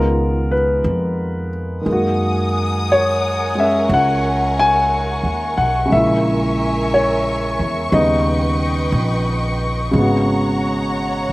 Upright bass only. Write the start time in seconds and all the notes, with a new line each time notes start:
Already playing: C#2
0.84 F2
1.86 F#2
3.89 C#2
5.23 D#2
5.58 B1
5.92 A#1
7.59 E2
7.92 D#2
8.92 A#1
9.93 G#1
11.30 A#1